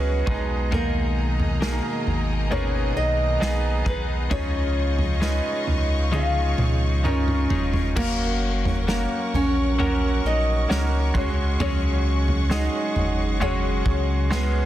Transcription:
Already playing: sub bass C#2, clean electric guitar F#3 C#4 F#4 G#4, nylon-string guitar B3 B4, grand piano C#4 F#4 G#4 C#5 D#5, string section G#4 C#5 F#5 C#6
0.26 sub bass B1, grand piano B2 G#3 D#4 G#4, clean electric guitar B3 D#4 G#4, string section G#4 D#5 G#5 A#5, kick, floor tom
0.71 clean electric guitar B2 D#3 A#3 D#4 G#4, nylon-string guitar A#3 A#4, floor tom
1.40 floor tom
1.60 grand piano B2 D#4 G#4 A#4, clean electric guitar A#3 D#4 G#4, nylon-string guitar A#3 A#4, snare
2.07 sub bass G#1, floor tom
2.50 clean electric guitar B2 D#3 A#3 B3 D#4 G#4, grand piano B3 D#4 G#4 A#4, nylon-string guitar C#4 C#5, floor tom
2.97 sub bass B1, nylon-string guitar D#4 D#5
3.40 sub bass B1, clean electric guitar A#3 B3 D#4 G#4, grand piano B3 D#4 G#4, snare
3.85 sub bass B1, clean electric guitar B3 D#4 G#4, nylon-string guitar B3 B4, kick, floor tom
4.30 sub bass C#2, clean electric guitar C#3 F3 G#3 C#4 D#4 G#4, grand piano C#3 C#4 D#4 F4 G#4, nylon-string guitar C#4 C#5, string section F5 C#6, kick, floor tom
4.99 floor tom
5.20 clean electric guitar G#3 C#4 D#4 G#4, grand piano C#4 D#4 F4 B4, nylon-string guitar D#4 D#5, snare
5.67 sub bass C#2, floor tom
6.11 clean electric guitar C#3 F3 G#3 C#4 D#4 G#4, grand piano C#4 D#4 F4 G#4, nylon-string guitar F4 F5, high tom
6.58 sub bass C#2, mid tom
7.03 clean electric guitar G#3 C#4 D#4 G#4, grand piano C#4 D#4 F4 A#4, nylon-string guitar C#4 C#5, mid tom
7.28 mid tom
7.50 sub bass F1, clean electric guitar G#3 C#4 D#4 G#4, floor tom
7.73 floor tom
7.95 sub bass F#1, clean electric guitar F#3 C#4 F#4 A#4, grand piano A#3 C#4 F#4 A#4, nylon-string guitar A#3 A#4, string section A#4 C#5 F#5 C#6, kick, floor tom, crash
8.65 floor tom
8.87 clean electric guitar F#3 C#4 F#4 A#4, grand piano A#3 C#4 F#4 A#4, nylon-string guitar A#3 A#4, snare
9.33 sub bass A#1, nylon-string guitar C#4 C#5, floor tom
9.78 clean electric guitar F#3 C#4 F#4 A#4, grand piano A#3 C#4 F#4 A#4, floor tom
10.24 sub bass A#1, nylon-string guitar D#4 D#5
10.68 sub bass C#2, clean electric guitar F#3 C#4 F#4 A#4, grand piano A#3 C#4 F#4 A#4, snare
11.14 sub bass C#2, grand piano C#3 G#3 C#4 F#4 G#4, nylon-string guitar C#4 C#5, clean electric guitar C#4 F#4 G#4, string section G#4 F#5, kick, floor tom
11.59 sub bass C#2, clean electric guitar C#3 F#3 C#4 F#4 G#4, nylon-string guitar C#4 C#5, floor tom
12.28 floor tom
12.50 clean electric guitar F#3 C#4 F#4 G#4, grand piano G#3 C#4 F#4 G#4, nylon-string guitar D#4 D#5, snare
12.96 sub bass F#1, floor tom
13.40 clean electric guitar C#3 F#3 C#4 F#4 G#4, grand piano G#3 C#4 F#4 G#4, nylon-string guitar C#4 C#5, floor tom
13.86 sub bass C#2, kick
14.30 clean electric guitar F#3 C#4 F#4 G#4, grand piano G#3 C#4 F#4 G#4, nylon-string guitar B3 B4, snare

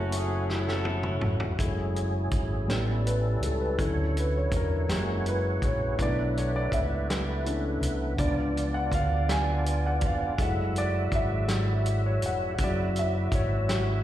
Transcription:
Already playing: fingered electric bass F#1, tonewheel organ F#3 A3 E4 F#4, horn section A3 C#4 F#4, grand piano A3 F#4 E5 G#5
0.12 horn section G#4, closed hi-hat
0.50 horn section C#4 E4 A4, snare
0.68 snare
0.85 high tom
1.03 mid tom
1.21 fingered electric bass F1, mid tom
1.40 floor tom
1.57 fingered electric bass F#1, tonewheel organ F#3 G#3 E4 G#4, grand piano G#3 A3 E4, kick, closed hi-hat
1.67 tonewheel organ C#4
1.96 closed hi-hat
2.31 fingered electric bass G#1, kick, closed hi-hat
2.67 fingered electric bass A1, grand piano G3 B3 C#4 C#5, tonewheel organ G3 C#4 E4 A4, snare, closed hi-hat
3.07 grand piano B4, closed hi-hat
3.40 fingered electric bass C#2, grand piano A4, closed hi-hat
3.61 grand piano B4
3.77 fingered electric bass D2, tonewheel organ D3 F#3 E4 C#5, grand piano E3 F#3 C#4 A4, kick, closed hi-hat
4.17 grand piano B4, closed hi-hat
4.37 grand piano C#5
4.52 fingered electric bass E2, kick, closed hi-hat
4.57 grand piano A#4
4.87 fingered electric bass F#1, grand piano E3 G#3 A#3, tonewheel organ C#4 E4 F#4 C#5, snare, closed hi-hat
5.26 grand piano B4, closed hi-hat
5.62 fingered electric bass A#1, grand piano C#5, kick, closed hi-hat
5.97 fingered electric bass B1, grand piano E3 A3 D4 C#5, tonewheel organ A3 C#4 E4 B4, kick, closed hi-hat
6.02 tonewheel organ B3, grand piano D5
6.37 grand piano C#5, closed hi-hat
6.56 grand piano D5
6.71 fingered electric bass C#2, grand piano E5, kick, closed hi-hat
7.10 snare, closed hi-hat
7.44 grand piano E3 A3 C#4 D4, closed hi-hat
7.81 fingered electric bass C2, closed hi-hat
8.18 fingered electric bass C#2, grand piano F3 B3 D4 D5, tonewheel organ B3 D4 F4 D5, kick, closed hi-hat
8.57 closed hi-hat
8.74 grand piano F#5
8.91 fingered electric bass D2, grand piano F5, kick, closed hi-hat
9.29 grand piano G#5, snare, closed hi-hat
9.66 closed hi-hat
9.86 grand piano F#5
10.01 fingered electric bass F1, kick, closed hi-hat
10.06 grand piano F5
10.38 fingered electric bass F#1, tonewheel organ F#3 E4 F#4 E5, grand piano G#3 A3 E4, kick, closed hi-hat
10.42 grand piano F#5
10.76 grand piano D5, closed hi-hat
11.11 fingered electric bass G#1, grand piano E5, kick, closed hi-hat
11.48 snare, closed hi-hat
11.86 closed hi-hat
12.06 grand piano C#5
12.22 fingered electric bass F1, grand piano F#5, closed hi-hat
12.58 fingered electric bass F#1, grand piano C#3 F#3 E4, tonewheel organ F#3 E4 F#4 E5, kick, closed hi-hat
12.64 grand piano D5
12.96 grand piano E5, closed hi-hat
13.32 fingered electric bass G#1, grand piano C#5, kick, closed hi-hat
13.69 grand piano F#4, snare, closed hi-hat

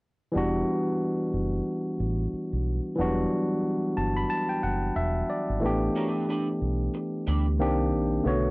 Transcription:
0.31 fingered electric bass E1, tine electric piano E3 G3 B3
0.36 tine electric piano D4 F#4
1.33 fingered electric bass F#1
2.00 fingered electric bass A1
2.33 muted fingered electric bass stroke
2.53 fingered electric bass B1
2.96 fingered electric bass E1, tine electric piano E3 F#3 B3
3.00 tine electric piano D4 F#4
3.04 tine electric piano G3
3.97 fingered electric bass G1, tine electric piano A5
4.17 tine electric piano B5
4.30 tine electric piano A5
4.49 tine electric piano G5
4.63 fingered electric bass F#1, tine electric piano F#5
4.96 fingered electric bass E1, tine electric piano E5
5.30 tine electric piano D5
5.49 fingered electric bass G#1
5.60 fingered electric bass A1, tine electric piano E3 A3 B3
5.64 tine electric piano D4 G4
5.95 clean electric guitar C#4 F#4 A#4 C#5
6.08 clean electric guitar D4 G4 B4 D5
6.29 clean electric guitar D4 G4 B4 D5
6.61 fingered electric bass B1
6.94 muted clean electric guitar stroke
7.27 fingered electric bass D2, clean electric guitar D4 G4 B4 D5
7.59 fingered electric bass C2, tine electric piano D#3 A#3 C4 D4 G4
7.92 fingered electric bass A#1
8.23 fingered electric bass B1, tine electric piano C#3 A3 B3
8.27 tine electric piano D3 F#4 C#5

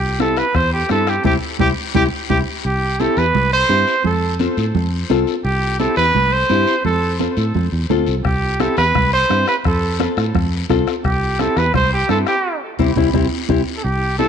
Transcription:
Already playing: fingered electric bass C2, trumpet G4
0.19 nylon-string guitar C4 E4 G4, trumpet A4, bombo rim, high conga, short guiro
0.37 trumpet B4, bombo rim, short guiro
0.54 fingered electric bass E2, trumpet C5, bombo low, bombo rim, high conga, long guiro
0.73 trumpet G4
0.89 fingered electric bass G2, nylon-string guitar C4 E4 G4, trumpet A4, bombo rim, high conga, short guiro
1.07 trumpet G4, bombo rim, short guiro
1.24 fingered electric bass C2, nylon-string guitar C4 E4 G4, trumpet G4, bombo low, low conga, long guiro
1.59 fingered electric bass C2, nylon-string guitar C4 E4 G4, trumpet G4, bombo low, low conga
1.95 fingered electric bass C2, nylon-string guitar C4 E4 G4, trumpet G4, bombo low, low conga, long guiro
2.29 fingered electric bass C2, nylon-string guitar C4 E4 G4, trumpet G4, bombo low, low conga, long guiro
2.64 fingered electric bass C2, trumpet G4, high conga, long guiro
3.00 nylon-string guitar C4 E4 G4, trumpet A4, high conga, short guiro
3.17 fingered electric bass E2, trumpet B4, short guiro
3.35 fingered electric bass C2, high conga, low conga, long guiro
3.53 trumpet C5
3.69 fingered electric bass G2, nylon-string guitar C4 E4 G4, high conga, short guiro
3.87 short guiro
4.04 fingered electric bass F2, trumpet A4, high conga, low conga, long guiro
4.39 nylon-string guitar C4 F4 A4, high conga, short guiro
4.57 fingered electric bass A2, short guiro
4.75 fingered electric bass F2, high conga, low conga, long guiro
5.10 fingered electric bass C2, nylon-string guitar C4 F4 A4, high conga, short guiro
5.27 short guiro
5.44 fingered electric bass C2, trumpet G4, high conga, long guiro
5.79 nylon-string guitar C4 E4 G4, trumpet A4, high conga, short guiro
5.96 fingered electric bass E2, trumpet B4, short guiro
6.14 fingered electric bass C2, high conga, low conga, long guiro
6.33 trumpet C5
6.49 fingered electric bass G2, nylon-string guitar C4 E4 G4, high conga, short guiro
6.67 short guiro
6.85 fingered electric bass F2, trumpet A4, high conga, low conga, long guiro
7.19 nylon-string guitar C4 F4 A4, high conga, short guiro
7.37 fingered electric bass A2, short guiro
7.54 fingered electric bass F2, high conga, low conga, long guiro
7.72 fingered electric bass E2
7.89 fingered electric bass D2, nylon-string guitar C4 F4 A4, high conga, low conga, short guiro
8.07 fingered electric bass C2, short guiro
8.24 fingered electric bass C2, trumpet G4, bombo low, bombo rim, high conga, long guiro
8.59 nylon-string guitar C4 E4 G4, trumpet A4, bombo rim, high conga, short guiro
8.77 fingered electric bass E2, trumpet B4, bombo rim, short guiro
8.95 fingered electric bass C2, bombo low, bombo rim, high conga, low conga, long guiro
9.13 trumpet C5
9.29 fingered electric bass G2, nylon-string guitar C4 E4 G4, bombo rim, high conga, short guiro
9.47 trumpet B4, bombo rim, short guiro
9.64 fingered electric bass F2, trumpet A4, bombo low, bombo rim, high conga, long guiro
9.99 nylon-string guitar C4 F4 A4, bombo rim, high conga, short guiro
10.17 fingered electric bass A2, bombo rim, short guiro
10.35 fingered electric bass F2, bombo low, bombo rim, high conga, low conga, long guiro
10.69 fingered electric bass C2, nylon-string guitar C4 F4 A4, bombo low, bombo rim, high conga, short guiro
10.87 bombo rim, short guiro
11.04 fingered electric bass C2, trumpet G4, bombo low, bombo rim, high conga, long guiro
11.39 nylon-string guitar C4 E4 G4, trumpet A4, bombo rim, high conga, short guiro
11.57 fingered electric bass E2, trumpet B4, bombo rim, short guiro
11.74 fingered electric bass C2, trumpet C5, bombo low, bombo rim, high conga, low conga, long guiro
11.93 trumpet G4
12.08 fingered electric bass G2, nylon-string guitar C4 E4 G4, trumpet A4, bombo rim, high conga, short guiro
12.26 trumpet G4, bombo rim, short guiro
12.79 fingered electric bass C2, nylon-string guitar C4 E4 G4, bombo low, high conga, long guiro
12.96 fingered electric bass C2, nylon-string guitar C4 E4 G4, bombo low, high conga, long guiro
13.13 fingered electric bass C2, nylon-string guitar C4 E4 G4, bombo low, high conga, long guiro
13.49 fingered electric bass C2, nylon-string guitar C4 E4 G4, bombo low, high conga, long guiro
13.77 trumpet A4
13.84 fingered electric bass C2, trumpet G4, high conga
14.19 nylon-string guitar C4 E4 G4, trumpet A4, high conga, short guiro

